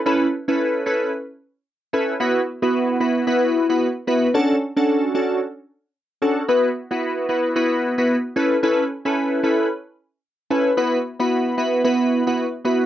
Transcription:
X:1
M:4/4
L:1/16
Q:"Swing 16ths" 1/4=112
K:A
V:1 name="Synth keys"
[CEAB] z2 [CEAB]3 [CEAB]2 z6 [CEAB] z | [B,EFB] z2 [B,EFB]3 [B,EFB]2 [B,EFB]3 [B,EFB] z2 [B,EFB] z | [CDFA] z2 [CDFA]3 [CDFA]2 z6 [CDFA] z | [B,EFB] z2 [B,EFB]3 [B,EFB]2 [B,EFB]3 [B,EFB] z2 [CEAB] z |
[CEAB] z2 [CEAB]3 [CEAB]2 z6 [CEAB] z | [B,EFB] z2 [B,EFB]3 [B,EFB]2 [B,EFB]3 [B,EFB] z2 [B,EFB] z |]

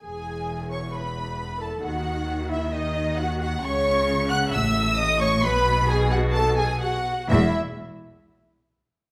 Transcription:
X:1
M:4/4
L:1/8
Q:1/4=132
K:E
V:1 name="Violin section"
g3 c' b3 a | f3 e d2 f f | c'3 f' e'2 d' c' | b2 g f a g f2 |
e z6 z |]
V:2 name="Violin section"
g3 c' b3 a | f3 e d2 f f | c'3 f' e'2 d' c' | b2 g f a g f2 |
e z6 z |]
V:3 name="Viola section"
G3 c B3 A | F3 E D2 F F | c3 f e2 d c | B2 G F A G F2 |
E z6 z |]
V:4 name="Cello section" clef=bass
E,,8 | D,8 | C,4 A,,4 | B,,6- B,, z |
E,, z6 z |]
V:5 name="Double bass section" clef=bass
E,,,8 | D,,8 | C,,4 A,,,4 | B,,,6- B,,, z |
E,,, z6 z |]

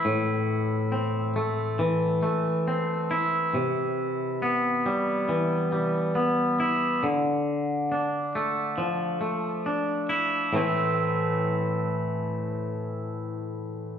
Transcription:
X:1
M:4/4
L:1/8
Q:1/4=68
K:Am
V:1 name="Clean electric guitar"
[A,,E,A,CE]2 C A, E, A, C E | C,2 B, G, E, G, B, E | D,2 D A, F, A, D E | [A,,E,A,CE]8 |]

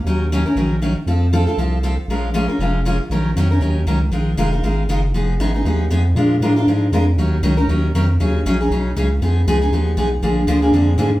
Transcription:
X:1
M:4/4
L:1/8
Q:"Swing" 1/4=236
K:Bbm
V:1 name="Steel-string acoustic guitar"
[E,G,DEB] z [E,G,DEB] [DEB] [E,G,DEB] z [E,G,DEB] z | [F,CF=A] z [F,CFA] [CFA] [F,CFA] z [F,CFA] z | [F,A,DFB] z [F,A,DFB] [DFB] [F,A,DFB] z [F,A,DFB] z | [K:Ebm] [E,G,DEB] z [E,G,DEB] [DEB] [E,G,DEB] z [E,G,DEB] z |
[E,A,EFB] z [E,A,EFB] [EFB] [E,A,EFB] z [E,A,EFB] z | [F,CEA] z [F,CEA] [CEA] [F,CEA] z [F,CEA] z | [F,A,=DFB] z [F,A,DFB] [DFB] [F,A,DFB] z [F,A,DFB] z | [E,G,DEB] z [E,G,DEB] [DEB] [E,G,DEB] z [E,G,DEB] z |
[D,G,DEA] z [D,G,DEA] [DEA] [D,G,DEA] z [D,G,DEA] z | [F,CEA] z [F,CEA] [CEA] [F,CEA] z [F,CEA] z | [=D,F,B,=DA] z [D,F,B,DA] [B,DA] [D,F,B,DA] z [D,F,B,DA] z |]
V:2 name="Sub bass" clef=bass
E,,4 B,,,4 | F,,4 C,,4 | B,,,4 F,,,4 | [K:Ebm] B,,,2 F,,2 E,,2 D,,2 |
B,,,2 F,,,2 A,,,2 G,,,2 | F,,,2 A,,,2 E,,2 F,,2 | B,,2 =A,,2 _A,,2 F,,2 | E,,2 D,,2 E,,2 F,,2 |
E,,2 B,,,2 C,,2 D,,2 | F,,2 D,,2 E,,2 C,,2 | B,,,2 =D,,2 F,,2 A,,2 |]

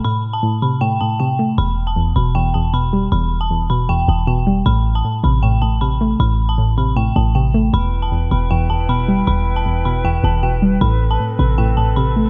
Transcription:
X:1
M:4/4
L:1/16
Q:1/4=156
K:Em
V:1 name="Synth bell"
b3 a z2 b2 g2 a2 g4 | b3 a z2 b2 g2 a2 b4 | b3 a z2 b2 g2 a2 g4 | b3 a z2 b2 g2 a2 b4 |
b3 a z2 b2 g2 a2 g4 | b3 a z2 b2 g2 a2 b4 | b3 a z2 b2 g2 a2 g4 | b3 a z2 b2 g2 a2 b4 |]
V:2 name="Flute section"
z16 | z16 | z16 | z16 |
z16 | [EBg]16- | [EBg]16 | [CA]16 |]
V:3 name="Synth pluck" clef=bass
[A,,C,A,]4 A,,2 C,2 A,,2 A,,2 C,2 A,2 | E,,4 E,,2 B,,2 E,,2 E,,2 B,,2 G,2 | E,,4 E,,2 B,,2 E,,2 E,,2 B,,2 G,2 | A,,4 A,,2 C,2 A,,2 A,,2 C,2 A,2 |
A,,4 A,,2 C,2 A,,2 A,,2 C,2 A,2 | E,,4 E,,2 B,,2 E,,2 E,,2 B,,2 G,2 | E,,4 E,,2 B,,2 E,,2 E,,2 B,,2 G,2 | A,,4 A,,2 C,2 A,,2 A,,2 C,2 A,2 |]
V:4 name="808-style bass" clef=bass
z16 | E,,,6 E,,,8- E,,,2 | E,,,8- E,,,2 E,,,6 | A,,,4 z2 A,,,8- A,,,2 |
A,,,8- A,,,2 A,,,6 | E,,,6 E,,,8- E,,,2 | E,,,8- E,,,2 E,,,6 | A,,,4 z2 A,,,8- A,,,2 |]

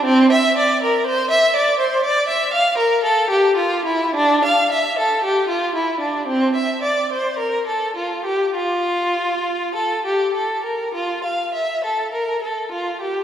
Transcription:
X:1
M:4/4
L:1/16
Q:1/4=54
K:F
V:1 name="Violin"
C e d B c e d c d e f B A G F E | D f e A G F E D C e d c B A F G | F4 A G A B F f e A B A F G |]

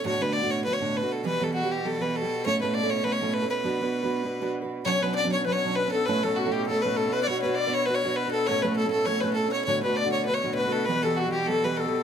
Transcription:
X:1
M:4/4
L:1/16
Q:"Swing" 1/4=199
K:Bm
V:1 name="Fiddle"
c2 B2 d2 c2 B c3 B2 A2 | B2 A2 F2 G2 A2 B2 A4 | c2 B2 d2 c2 B c3 B2 B2- | B12 z4 |
c2 B2 d2 c2 B c3 B2 A2 | B2 A2 F2 G2 A2 B2 A2 B3/2 d/2 | c2 B2 d2 c2 B c3 B2 A2 | c2 B2 A2 A2 c2 B2 A2 c2 |
c2 B2 d2 c2 B c3 B2 A2 | B2 A2 F2 G2 A2 B2 A4 |]
V:2 name="Flute"
z16 | z16 | z16 | z16 |
c2 B2 d2 c2 B c3 B2 A2 | B2 A2 F2 G2 A2 B2 A2 B2 | c4 d2 c2 B c3 B2 A2 | c2 B2 A2 A2 c2 B2 A2 c2 |
c2 B2 d4 B c3 B4 | B2 A2 F2 z2 A2 B2 A4 |]
V:3 name="Steel-string acoustic guitar"
[D,,A,,D,A,DF]2 [D,,A,,D,A,DF]3 [D,,A,,D,A,DF]3 [D,A,DF]2 [D,,A,,D,A,DF]3 [D,A,DF]3 | [E,G,B,G]2 [E,G,B,G]3 [E,G,B,G]3 [E,G,B,G]2 [E,G,B,G]3 [G,B,G]3 | [A,,A,CEA]2 [A,,A,CEA]3 [A,,A,CEA]3 [A,CEA]2 [A,,A,CEA]3 [CEA]3 | [B,DFB]2 [B,DFB]3 [B,DFB]3 [B,DFB]2 [B,DFB]3 [DFB]3 |
[B,,F,B,CD]2 [B,,F,B,CD]3 [B,,F,B,CD]3 [F,B,CD]2 [B,,F,B,CD]3 [B,CD]3 | [A,,A,CEA]2 [A,,A,CEA]3 [A,,A,CEA]3 [A,CEA]2 [A,,A,CEA]3 [CEA]3 | [B,DFB]2 [B,DFB]3 [B,DFB]3 [B,DFB]2 [B,DFB]3 [DF]3 | [A,,A,CEA]2 [A,,A,CEA]3 [A,,A,CEA]3 [A,CEA]2 [A,,A,CEA]3 [CEA]3 |
[D,,A,,D,A,DF]2 [D,,A,,D,A,DF]3 [D,,A,,D,A,DF]3 [D,A,DF]2 [D,,A,,D,A,DF]3 [D,A,DF]3 | [E,G,B,G]2 [E,G,B,G]3 [E,G,B,G]3 [E,G,B,G]2 [E,G,B,G]3 [G,B,G]3 |]
V:4 name="Cello" clef=bass
B,,16- | B,,16- | B,,16- | B,,16 |
B,,16- | B,,16- | B,,16- | B,,16 |
B,,16- | B,,16 |]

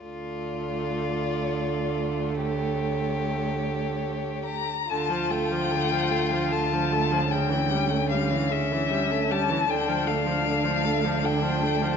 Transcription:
X:1
M:3/4
L:1/16
Q:1/4=75
K:Dm
V:1 name="Violin"
d12 | ^c8- c2 b2 | a2 g6 a4 | g4 f2 e4 a2 |
g2 f6 g4 |]
V:2 name="Violin"
F12 | G8- G3 z | F12 | ^C12 |
D12 |]
V:3 name="Viola" clef=bass
A,12- | A,8- A,3 z | D, F, A, F, D, F, A, F, D, F, A, F, | ^C, E, G, A, G, E, C, E, G, A, G, E, |
D, F, A, F, D, F, A, F, D, F, A, F, |]
V:4 name="Cello" clef=bass
D,,12- | D,,8- D,,3 z | D,,12- | D,,12 |
D,,12 |]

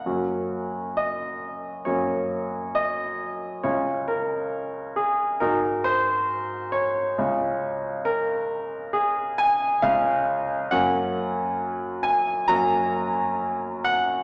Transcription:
X:1
M:4/4
L:1/8
Q:1/4=68
K:F#
V:1 name="Grand piano"
f2 d2 c2 d2 | c A2 G A ^B2 c- | c2 A2 G g e2 | f3 g a3 f |]
V:2 name="Grand piano"
[F,,A,CF]4 [F,,A,CF]4 | [C,,G,CE]4 [G,,G,DF]4 | [C,,G,CE]6 [C,,G,CE]2 | [F,,A,CF]4 [F,,A,CF]4 |]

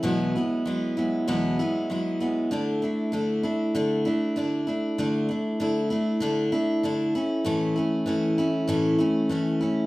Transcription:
X:1
M:4/4
L:1/8
Q:1/4=97
K:Dlyd
V:1 name="Steel-string acoustic guitar"
[E,,B,,F,G,B,E] [F,G,B,E] [F,G,B,E] [F,G,B,E] [E,,B,,F,G,B,E] [F,G,B,E] [F,G,B,E] [F,G,B,E] | [D,A,DE] [A,DE] [D,A,DE] [A,DE] [D,A,DE] [A,DE] [D,A,DE] [A,DE] | [D,A,DE] [A,DE] [D,A,DE] [A,DE] [D,A,DE] [A,DE] [D,A,DE] [A,CE] | [A,,E,A,CE] [A,CE] [E,A,CE] [A,CE] [A,,E,A,CE] [A,CE] [E,A,CE] [A,CE] |]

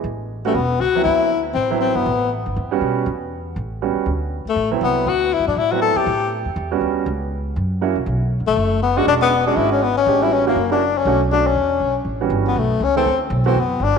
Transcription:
X:1
M:4/4
L:1/8
Q:"Swing" 1/4=240
K:Amix
V:1 name="Tenor saxophone"
z3 A, B,2 F2 | E3 z =C2 C B,- | B,2 z6 | z8 |
z3 A,2 z B,2 | F2 E D E F A G- | G2 z6 | z8 |
z3 A,3 B, F | D B,2 D E C B, C- | C E C _B,2 D2 C- | C z D C4 z |
z3 B, A,2 C =C- | =C z2 C B,2 D z |]
V:2 name="Grand piano"
z3 [G,B,CF] z3 [F,B,=CE]- | [F,B,=CE]2 z3 [F,B,CE]3 | z4 z [G,B,CF]3 | z6 [G,B,CF]2 |
z4 z [F,B,=CE]3 | z4 z [F,B,=CE]3 | z4 z [G,B,CF]3 | z6 [^A,CEF] z |
z6 z [^G,CDF]- | [^G,CDF]2 z [G,CDF]3 z2 | [^G,=CD=G] [=G,B,^CF]2 [_B,CEF] z [^A,CEF] z2 | [A,CDF] z [A,CDF] z4 z |
z [E,G,B,CF]3 z3 [E,A,B,=CA] | z3 [E,A,B,=CF] z4 |]
V:3 name="Upright bass" clef=bass
A,,,4 E,,,2 C,,2 | D,,4 A,,,3 G,,, | A,,,3 G,,, E,,2 B,,2 | E,,4 A,,,3 z |
D,,3 z A,,,2 =C,,2 | D,,2- (3D,, F,, A,, A,,3 z | A,,3 E,, E,,2 D,,2 | C,,4 F,,3 =C,, |
B,,,2- (3B,,, D,, _B,,, F,,,4 | E,,,4 ^G,,,4 | A,,,4 F,,,4 | B,,,4 E,,2 B,,,2 |
A,,,2 G,,,2 B,,,2 C,,2 | D,,2 B,,,2 F,,,2 G,,,2 |]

